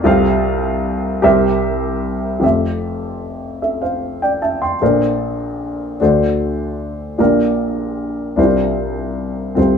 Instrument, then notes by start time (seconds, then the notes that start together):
grand piano
0.04 C2 C3 F4 A4 C5 F5
1.22 C2 C3 G4 A#4 C5 E5
2.40 F1 F2 F4 G4 A4
2.44 E5
3.62 A4 E5
3.82 C5 F5
4.22 D5 G5
4.42 E5 A5
4.62 G5 C6
4.81 A#1 A#2 D4 A4 A#4 C5
6.00 D2 D3 D4 F#4 A4 C5
7.18 A#1 A#2 D4 F4 G4 A#4
8.36 C2 C3 D4 E4 A#4 C5
8.44 F4
9.55 C2 C3 C4 F4 A4 C5